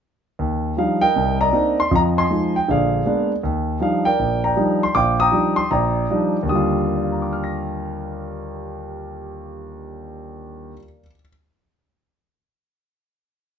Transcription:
grand piano
0.39 D#2
0.77 F3 G3 D4 D#4 F5
1.01 A#4 D#5 G5
1.16 C2
1.41 D5 D#5 A#5
1.52 A#3 C4 D4 D#4
1.80 C6
1.91 F2 F3 D#5
1.96 A#5
2.18 D#5 G#5 C6
2.31 F3 G#3 D#4
2.56 G5
2.68 A#1 D3 G#4 D5 F5
3.06 G#3 A#3 B3 D4
3.43 D#2
3.80 F3 G3 D4 D#4 F5
4.05 A#4 D5 G5
4.19 A#1
4.44 D5 G5 A#5
4.57 F3 G3 D4 D#4
4.83 C6
4.95 A#1 F5 G5 D6
5.20 G5 A#5 D#6
5.32 F3 G3 D4 D#4
5.56 C6
5.71 A#1 D5 G5 A#5
6.10 F3 G3 D4 D#4
6.43 D#2
6.48 D3 G3 D#6
6.55 F4
6.87 A#4
6.95 D5
7.02 F5
7.12 A#5
7.22 D6
7.33 F6
7.44 A#6

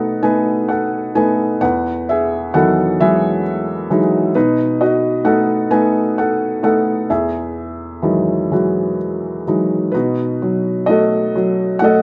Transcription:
felt piano
Already playing: B2 A3 B3 D#4 F#4 A4 B4 D#5 F#5
0.23 A3 B3 D#4 B4 G#5
0.69 A4 F#5
1.15 A3 B3 D#4 B4 G#5
1.61 E2 B4 F#5
2.09 G#4 E5
2.54 D#3 E3 F#3 B3 A4 F#5
3.00 E3 F#3 G#3 F#4 G#4 E5
3.90 E3 F#3 G#3 D#4
4.34 B2 D#4 B4
4.81 F#4 D#5
5.24 A3 B3 D#4 A4 F#5
5.71 A3 B3 D#4 B4 G#5
6.18 A4 F#5
6.63 A3 B3 D#4 A4 F#5
7.10 E2 G#4 E5
8.02 D#3 E3 F#3 G#3
8.52 E3 F#3 G#3 F#4
9.47 E3 F#3 G#3 D#4
9.92 B2 D#4 F#4 B4
10.42 F#3
10.86 A3 F#4 A4 D#5
11.36 F#3
11.79 A3 F#5
11.84 A4 D#5

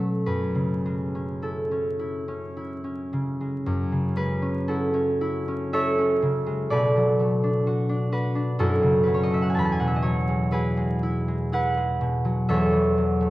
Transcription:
harp
Already playing: B2 F#3 A3 C#4 F#4 B4 C#5 D#5
0.26 F#2 B4
0.55 C#3
0.86 G#3
1.15 C#4
1.42 E4 A4
1.71 C#4
1.99 E4
2.28 C#4
2.57 E4
2.84 C#4
3.13 C#3
3.41 G#3
3.66 F#2
3.92 C#3
4.16 G#3 B4
4.42 C#4
4.68 E4 F#4 A4
4.94 C#4
5.21 E4
5.48 C#4
5.73 E4 A4 C#5 E5
5.98 C#4
6.22 C#3
6.46 G#3
6.70 B2 A4 B4 D5
6.97 F#3
7.20 A3
7.44 D4
7.67 F#4
7.89 D4
8.12 F#4 B4
8.35 D4
8.59 F#2 E4 F#4 A4
8.83 C#3
9.03 F#3 B4
9.14 C#5
9.23 D#5
9.31 A3 E5
9.42 F#5
9.50 G#5
9.55 E2 A5
9.59 B5
9.65 A5
9.72 G#5
9.80 B2 F#5
9.88 E5
9.96 D#5
10.02 F#3 C#5
10.28 G#3
10.51 E4 F#4 G#4 B4
10.77 G#3
11.03 E4
11.28 G#3
11.52 E4 B4 F#5
11.77 G#3
12.01 B2
12.25 F#3
12.49 E2 A4 C#5 E5
12.73 E3
12.98 F#3
13.21 A3

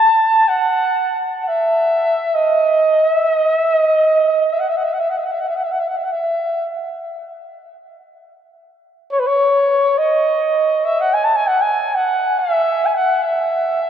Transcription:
flugelhorn
Already playing: A5
0.48 F#5
1.43 F#5
1.48 E5
2.35 D#5
3.13 E5
3.30 D#5
3.56 E5
3.73 D#5
4.53 E5
4.60 F#5
4.69 E5
4.77 F#5
4.84 E5
4.94 F#5
5.00 E5
5.10 F#5
5.18 E5
5.25 F#5
5.33 E5
5.40 F#5
5.48 E5
5.56 F#5
5.64 E5
5.72 F#5
5.80 E5
5.88 F#5
5.97 E5
6.04 F#5
6.12 E5
9.12 C#5
9.19 B4
9.27 C#5
9.98 D#5
10.85 E5
11.01 F#5
11.14 G#5
11.24 A5
11.36 G#5
11.47 F#5
11.62 G#5
11.95 F#5
12.39 E5
12.86 G#5
12.95 F#5
13.23 E5

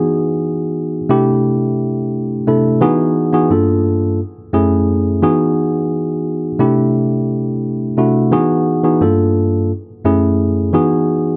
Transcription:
tine electric piano
Already playing: E3 B3 D#4 F#4 G#4
1.09 C3 A3 D4 E4 G4
2.47 C3 A3 D4 E4 A4
2.81 E3 B3 D#4 F#4 G#4
3.33 E3 B3 D#4 F#4 G#4
3.50 G2 A#3 D4 F4 A4
4.53 F#2 A3 C#4 E4 G#4
5.22 E3 B3 D#4 F#4 G#4
6.59 C3 A3 D4 E4 G4
7.97 C3 A3 D4 E4 F#4
8.31 E3 B3 D#4 F#4 G#4
8.83 E3 B3 D#4 F#4 G#4
9.01 G2 A#3 D4 F4 A4
10.05 F#2 A3 C#4 E4 G#4
10.73 E3 B3 D#4 F#4 G#4

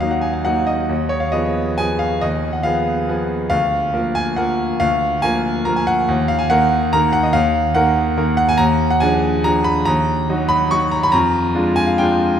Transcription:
grand piano
Already playing: D#2 D#5
0.00 F#3 A#3 D#4 F5
0.11 F#5
0.21 G#5
0.33 F5
0.45 F#3 A#3 D#4 F#5
0.67 D#5
0.89 D#2
1.09 C#5
1.20 F5
1.32 F3 B3 G#4 D#5
1.78 F3 B3 G#4 G#5
1.99 F5
2.21 D#2 D#5
2.53 F#5
2.63 F3 B3 G#4 F5
3.08 F3 B3 G#4
3.50 D2 F5
3.94 F3 A#3 A#4
4.15 G#5
4.36 F3 A#3 A#4 F#5
4.80 D2 F5
5.22 F3 A#3 A#4 G#5
5.65 F3 A#3 A#4 A#5
5.76 G#5
5.87 F#5
6.08 D#2
6.28 F5
6.39 G#5
6.50 D#3 A#3 A#4 F#5
6.93 D#3 A#3 A#4 A#5
7.13 F#5
7.23 D#5
7.33 D#2 F5
7.75 D#3 A#3 A#4 F#5
8.17 D#3 A#3 A#4
8.37 F#5
8.49 G#5
8.58 D#2 A#5
8.90 F#5
9.00 F3 D4 G#4 G#5
9.44 F3 D4 G#4 A#5
9.64 B5
9.85 D#2 A#5
10.29 F#3 D#4 F#4
10.49 B5
10.71 F#3 D#4 F#4 C#6
10.91 A#5
11.03 B5
11.12 F2 A#5
11.55 G#3 D4 F4
11.76 G#5
11.87 F5
11.98 G#3 D4 F4 G5

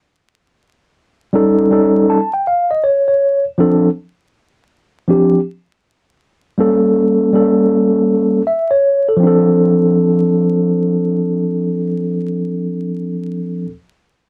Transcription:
tine electric piano
1.33 G3 C#4 D#4 A4
1.70 G3 C#4 D#4 A4
2.10 A5
2.33 G5
2.47 F5
2.71 D#5
2.84 C#5
3.08 C#5
3.58 F3 C4 D4 A4
5.08 F3 C4 D4 G4
6.58 G3 A#3 C#4 A4
7.33 G3 A#3 C#4 A4
8.47 E5
8.71 C#5
9.08 A4
9.17 F3 C4
9.23 D4 A4

